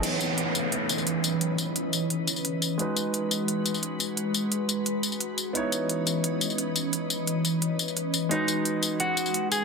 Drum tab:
CC |x---------------|----------------|----------------|----------------|
HH |x-x-x-x-x-x-x-x-|x-x-x-x-x-x-x-x-|x-x-x-x-x-x-x-x-|x-x-x-x-x-x-x-x-|
TB |--x---x---xx--x-|--x---x---xx--x-|--x---x---xx--x-|--x---x---xx--x-|

CC |----------------|----------------|----------------|
HH |x-x-x-x-x-x-x-x-|x-x-x-x-x-x-x-x-|x-x-x-x-x-x-x-x-|
TB |--x---x---xx--x-|--x---x---xx--x-|--x---x---xx--x-|